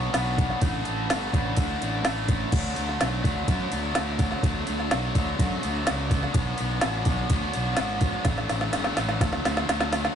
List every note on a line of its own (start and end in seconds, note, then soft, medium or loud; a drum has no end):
0.00 0.12 B2 medium
0.00 0.12 F#3 medium
0.00 0.13 B3 medium
0.00 0.15 D4 medium
0.13 0.51 B1 medium
0.13 0.60 B2 loud
0.13 0.38 F#3 loud
0.13 0.37 B3 loud
0.13 0.36 D4 loud
0.13 snare loud
0.13 ride loud
0.36 0.61 F#3 medium
0.36 0.60 B3 medium
0.36 0.62 D4 medium
0.36 kick medium
0.36 ride medium
0.50 snare soft
0.60 0.80 A1 loud
0.60 1.08 A2 loud
0.60 1.08 D3 loud
0.60 0.86 E3 loud
0.60 0.84 A3 loud
0.60 0.84 D4 loud
0.60 kick loud
0.60 ride loud
0.84 1.05 A1 medium
0.84 1.09 E3 medium
0.84 1.10 A3 medium
0.84 1.11 D4 medium
0.84 ride medium
1.09 1.28 G1 loud
1.09 1.33 D3 medium
1.09 1.34 E3 medium
1.09 1.32 A3 medium
1.09 1.32 D4 medium
1.09 snare loud
1.09 ride loud
1.33 1.52 A1 medium
1.33 1.82 A2 medium
1.33 1.55 D3 medium
1.33 1.57 E3 medium
1.33 1.58 A3 medium
1.33 1.58 D4 medium
1.33 kick medium
1.33 ride medium
1.57 1.76 D2 medium
1.57 2.03 D3 medium
1.57 1.83 E3 medium
1.57 1.82 A3 medium
1.57 1.81 D4 medium
1.57 kick medium
1.57 ride loud
1.81 2.00 A1 medium
1.81 2.05 E3 medium
1.81 2.05 A3 medium
1.81 2.05 D4 medium
1.81 ride medium
2.03 2.42 A1 medium
2.03 2.50 A2 medium
2.03 2.50 D3 medium
2.03 2.30 E3 loud
2.03 2.29 A3 loud
2.03 2.28 D4 medium
2.03 snare loud
2.03 ride loud
2.28 2.51 E3 medium
2.28 2.53 A3 medium
2.28 2.53 D4 medium
2.28 kick medium
2.28 ride medium
2.51 2.71 D2 loud
2.51 3.00 D3 medium
2.51 2.79 F#3 loud
2.51 2.77 A3 loud
2.51 2.76 D4 loud
2.51 kick loud
2.51 crash loud
2.76 2.95 D2 medium
2.76 3.00 F#3 medium
2.76 3.01 A3 medium
2.76 3.02 D4 medium
2.76 ride medium
2.89 snare soft
3.00 3.19 B1 loud
3.00 3.24 D3 medium
3.00 3.23 F#3 medium
3.00 3.22 A3 medium
3.00 3.22 D4 medium
3.00 snare loud
3.00 ride loud
3.22 3.43 D2 medium
3.22 3.46 D3 medium
3.22 3.47 F#3 medium
3.22 3.48 A3 medium
3.22 3.49 D4 medium
3.22 kick medium
3.22 ride medium
3.47 3.66 F#2 medium
3.47 3.93 D3 medium
3.47 3.74 F#3 medium
3.47 3.73 A3 medium
3.47 3.71 D4 medium
3.47 kick medium
3.47 ride medium
3.72 3.91 D2 medium
3.72 3.96 F#3 medium
3.72 3.96 A3 medium
3.72 3.97 D4 medium
3.72 ride medium
3.95 4.33 D2 medium
3.95 4.41 D3 medium
3.95 4.22 F#3 medium
3.95 4.21 A3 loud
3.95 4.19 D4 loud
3.95 snare loud
3.95 ride loud
4.19 4.43 F#3 medium
4.19 4.44 A3 medium
4.19 4.45 D4 medium
4.19 kick medium
4.19 ride medium
4.31 snare soft
4.43 4.62 D2 medium
4.43 4.89 D3 medium
4.43 4.69 F#3 loud
4.43 4.67 A3 loud
4.43 4.65 D4 loud
4.43 kick loud
4.43 ride medium
4.66 4.87 D2 medium
4.66 4.91 F#3 medium
4.66 4.92 A3 medium
4.66 4.92 D4 medium
4.66 ride medium
4.80 snare soft
4.90 5.10 B1 medium
4.90 5.15 D3 medium
4.90 5.15 F#3 medium
4.90 5.14 A3 medium
4.90 5.13 D4 medium
4.90 snare loud
4.90 ride loud
5.14 5.34 D2 medium
5.14 5.36 D3 medium
5.14 5.37 F#3 medium
5.14 5.39 A3 medium
5.14 5.39 D4 medium
5.14 kick medium
5.14 ride medium
5.37 5.57 F#2 medium
5.37 5.84 D3 medium
5.37 5.63 F#3 medium
5.37 5.63 A3 medium
5.37 5.62 D4 medium
5.37 kick medium
5.37 ride loud
5.63 5.82 D2 loud
5.63 5.85 F#3 medium
5.63 5.87 A3 medium
5.63 5.87 D4 medium
5.63 ride medium
5.85 6.25 C#2 medium
5.85 6.31 D3 medium
5.85 6.11 F#3 loud
5.85 6.10 A3 loud
5.85 6.09 D4 loud
5.85 snare loud
5.85 ride loud
6.09 6.32 F#3 medium
6.09 6.33 A3 medium
6.09 6.34 D4 medium
6.09 kick medium
6.09 ride medium
6.23 snare soft
6.32 6.53 B1 loud
6.32 6.79 B2 loud
6.32 6.59 F#3 loud
6.32 6.58 B3 loud
6.32 6.57 D4 loud
6.32 kick loud
6.32 ride loud
6.57 6.78 B1 loud
6.57 6.80 F#3 medium
6.57 6.81 B3 medium
6.57 6.82 D4 medium
6.57 ride medium
6.80 7.06 B2 medium
6.80 7.05 F#3 medium
6.80 7.04 B3 medium
6.80 7.05 D4 medium
6.80 snare loud
6.80 ride loud
6.84 7.02 A1 loud
7.05 7.24 B1 loud
7.05 7.28 B2 medium
7.05 7.29 F#3 medium
7.05 7.29 B3 medium
7.05 7.31 D4 loud
7.05 kick medium
7.05 ride medium
7.29 7.48 D2 medium
7.29 7.75 B2 medium
7.29 7.54 F#3 medium
7.29 7.53 B3 medium
7.29 7.52 D4 medium
7.29 kick medium
7.29 ride loud
7.52 7.73 B1 medium
7.52 7.75 F#3 medium
7.52 7.76 B3 medium
7.52 7.78 D4 medium
7.52 ride medium
7.76 8.15 G#1 medium
7.76 8.23 B2 loud
7.76 8.00 F#3 medium
7.76 7.99 B3 loud
7.76 7.99 D4 loud
7.76 snare loud
7.76 ride loud
7.99 8.24 F#3 medium
7.99 8.23 B3 medium
7.99 8.26 D4 medium
7.99 kick medium
7.99 ride medium
8.24 8.44 A1 medium
8.24 8.72 A2 loud
8.24 8.72 D3 loud
8.24 8.51 E3 loud
8.24 8.50 A3 loud
8.24 8.49 D4 loud
8.24 kick loud
8.24 snare medium
8.24 ride loud
8.38 snare soft
8.49 8.68 A1 medium
8.49 8.73 E3 medium
8.49 8.74 A3 medium
8.49 8.74 D4 medium
8.49 snare medium
8.49 ride medium
8.61 snare medium
8.73 8.92 G1 medium
8.73 8.97 D3 medium
8.73 8.96 E3 medium
8.73 8.96 A3 medium
8.73 8.94 D4 medium
8.73 snare medium
8.73 ride loud
8.84 snare medium
8.96 9.16 A1 medium
8.96 9.20 A2 medium
8.96 9.19 D3 medium
8.96 9.20 E3 medium
8.96 9.19 A3 medium
8.96 9.19 D4 loud
8.96 snare medium
8.96 ride medium
9.09 snare medium
9.21 9.39 D2 medium
9.21 9.66 D3 medium
9.21 9.47 F#3 medium
9.21 9.45 A3 loud
9.21 9.44 D4 medium
9.21 kick medium
9.21 snare medium
9.21 ride loud
9.33 snare medium
9.45 9.63 D2 medium
9.45 9.67 F#3 medium
9.45 9.68 A3 medium
9.45 9.68 D4 medium
9.45 snare loud
9.45 ride medium
9.57 snare medium
9.67 10.05 D2 medium
9.67 10.14 D3 medium
9.67 9.92 F#3 loud
9.67 9.91 A3 loud
9.67 9.90 D4 loud
9.67 snare loud
9.67 ride loud
9.80 snare loud
9.91 10.15 F#3 medium
9.91 10.14 A3 medium
9.91 10.14 D4 medium
9.91 snare medium
9.91 ride medium
10.05 snare medium